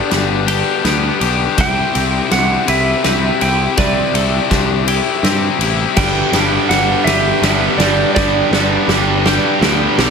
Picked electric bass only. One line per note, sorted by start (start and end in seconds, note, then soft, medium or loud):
0.12 0.61 G1 medium
0.84 1.09 D2 medium
1.21 1.46 B1 medium
1.58 1.82 C2 medium
1.95 2.20 C2 medium
2.32 2.56 C2 medium
2.68 2.93 C2 medium
3.05 3.29 C2 medium
3.42 3.66 C2 medium
3.78 4.02 C2 medium
4.14 4.38 C2 medium
4.51 5.00 C2 medium
5.23 5.48 G2 medium
5.59 5.84 A1 medium
5.97 6.22 G1 medium
6.32 6.57 G1 medium
6.69 6.94 G1 medium
7.05 7.30 G1 medium
7.42 7.67 G1 medium
7.78 8.03 G1 medium
8.17 8.41 G1 medium
8.51 8.76 G1 medium
8.88 9.38 G1 medium
9.61 9.86 D2 medium
9.98 10.10 B1 medium